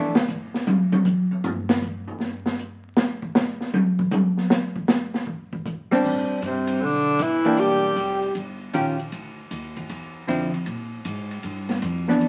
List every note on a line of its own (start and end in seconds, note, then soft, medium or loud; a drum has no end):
0.00 0.14 F2 medium
0.00 0.13 E3 medium
0.00 0.14 A3 medium
0.00 0.14 D4 medium
0.15 snare medium
0.28 kick medium
0.28 hi-hat pedal medium
0.54 snare medium
0.67 high tom loud
0.92 high tom loud
1.05 kick medium
1.05 hi-hat pedal medium
1.31 high tom soft
1.44 floor tom loud
1.69 snare loud
1.81 kick medium
1.81 hi-hat pedal medium
2.08 floor tom medium
2.20 snare soft
2.46 snare medium
2.58 hi-hat pedal medium
2.97 snare loud
3.22 kick medium
3.35 snare loud
3.35 hi-hat pedal medium
3.61 snare soft
3.74 high tom loud
3.99 kick medium
4.11 hi-hat pedal medium
4.11 high tom loud
4.37 snare soft
4.50 snare loud
4.76 kick medium
4.88 snare loud
4.88 hi-hat pedal medium
5.14 snare medium
5.27 kick medium
5.53 kick medium
5.65 kick medium
5.65 hi-hat pedal medium
5.91 6.40 G3 medium
5.91 6.40 C4 medium
5.91 6.41 D4 medium
5.91 snare soft
6.04 6.28 A2 medium
6.04 kick medium
6.04 crash medium
6.29 muted upright bass stroke soft
6.42 6.80 G2 medium
6.42 6.82 C3 medium
6.42 kick soft
6.42 hi-hat pedal medium
6.42 ride medium
6.46 6.86 C4 medium
6.67 ride medium
6.81 7.18 B1 medium
6.81 7.23 D3 medium
6.81 7.23 D4 medium
6.81 kick soft
7.19 7.44 G1 medium
7.19 7.60 E3 medium
7.19 7.61 E4 medium
7.19 kick soft
7.19 hi-hat pedal medium
7.19 ride medium
7.45 7.94 E3 medium
7.45 7.94 A#3 medium
7.45 7.94 D4 medium
7.45 7.95 G4 medium
7.45 muted upright bass stroke soft
7.45 ride soft
7.57 7.95 E1 medium
7.57 8.35 G3 medium
7.57 8.36 G4 medium
7.57 kick soft
7.57 ride medium
7.96 8.34 F1 medium
7.96 kick soft
7.96 hi-hat pedal soft
7.96 ride medium
8.22 ride soft
8.35 8.73 G1 medium
8.35 kick soft
8.35 ride soft
8.73 9.11 A#1 medium
8.73 8.97 D#3 soft
8.73 8.97 C#4 medium
8.73 8.97 F4 soft
8.73 8.97 G4 medium
8.73 kick soft
8.73 hi-hat pedal medium
8.73 ride medium
8.99 ride soft
9.12 9.50 D2 medium
9.12 kick soft
9.12 ride medium
9.51 9.88 D#2 medium
9.51 kick soft
9.51 hi-hat pedal soft
9.51 ride medium
9.77 kick medium
9.77 ride soft
9.89 10.27 E2 medium
9.89 kick soft
9.89 ride medium
10.27 10.65 F2 medium
10.27 10.51 D3 soft
10.27 10.51 F3 soft
10.27 10.51 C4 medium
10.27 10.51 E4 medium
10.27 kick soft
10.27 hi-hat pedal medium
10.27 ride medium
10.54 ride soft
10.66 11.04 A#2 medium
10.66 kick soft
10.66 ride medium
11.05 11.43 G#2 medium
11.05 kick soft
11.05 hi-hat pedal soft
11.05 ride medium
11.31 ride soft
11.43 11.81 G2 medium
11.43 kick soft
11.43 ride medium
11.69 snare soft
11.69 ride soft
11.82 12.20 F2 medium
11.82 kick soft
11.82 hi-hat pedal medium
11.82 ride medium
12.08 12.28 E3 medium
12.08 12.28 B3 medium
12.08 12.28 D4 medium
12.08 snare soft
12.21 12.28 C2 medium
12.21 kick soft
12.21 ride medium